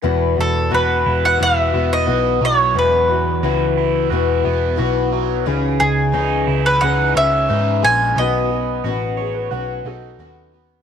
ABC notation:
X:1
M:4/4
L:1/16
Q:1/4=89
K:E
V:1 name="Mandolin"
z2 A2 B3 f e3 d3 c2 | B6 z8 z2 | z2 G4- G B f2 e4 g2 | d12 z4 |]
V:2 name="Upright piano"
z16 | z16 | z16 | z6 G B f2 [Af]4 z2 |]
V:3 name="Overdriven electric guitar"
E,,4 F2 E2 F2 B,2 F2 F,2 | E,,4 F2 E2 F2 B,2 F2 F,2 | C,4 D2 E2 D2 C2 D2 G,2 | B,4 F2 c2 F2 D2 F2 B,2 |]
V:4 name="Steel-string acoustic guitar"
[E,B,EF]2 [B,EF]2 [E,B,EF]4 [E,B,EF]2 [B,EF]2 [E,B,EF]2 [B,EF]2 | [E,B,EF]2 [B,EF]2 [E,B,EF]4 [E,B,EF]2 [B,EF]2 [E,B,EF]2 [B,EF]2 | [C,E,CDG]2 [CDG]2 [C,E,CG]4 [E,CG]2 [CG]2 [C,E,CG]2 [CG]2 | [B,,D,F,B,CF]2 [F,B,CF]2 [B,,D,F,B,CF]4 [F,B,CF]2 [F,B,CF]2 [B,,D,F,B,CF]2 [F,B,CF]2 |]
V:5 name="Picked electric bass" clef=bass
E,,,2 E,,,2 E,,,2 E,,,2 E,,,2 E,,,2 B,,,2 B,,,2 | E,,,4 C,,4 E,,,2 E,,,2 B,,,4 | C,,2 C,,2 C,,2 C,,2 C,,2 C,,2 G,,2 ^A,,,2 | B,,,4 A,,,4 B,,,2 B,,,2 D,,4 |]